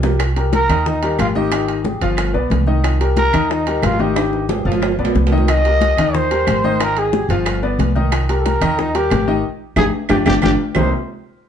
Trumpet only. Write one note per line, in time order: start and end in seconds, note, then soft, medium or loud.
0.54 0.89 A#4 loud
0.88 1.19 D#4 medium
1.20 1.27 F4 medium
1.36 1.82 G4 medium
3.18 3.53 A#4 loud
3.51 3.86 D#4 medium
3.84 4.02 F4 medium
4.00 4.50 G4 medium
5.49 6.17 D#5 loud
6.15 6.84 C5 medium
6.83 7.00 A#4 loud
6.99 7.31 G#4 medium
8.39 8.47 A4 medium
8.46 8.81 A#4 medium
8.79 8.97 D#4 medium
8.96 9.45 G4 medium
9.78 9.85 G#4 medium
10.10 10.18 G4 medium
10.27 10.35 G4 loud
10.43 10.51 G4 loud
10.76 10.91 C5 medium